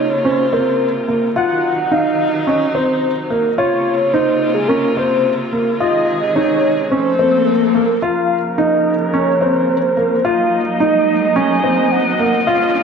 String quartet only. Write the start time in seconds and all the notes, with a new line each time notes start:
Already playing: C3 C#3 A#3 F4
1.35 D#3 F#3 D#4
3.58 C3 C#3 A#3 F4
5.80 C3 D#3 G#3 G#4
6.91 F3 A3 C4 A4
8.03 C#3 F3 A#3 A#4
10.24 F#3 D#4 D#5
12.47 C#3 A#3 F4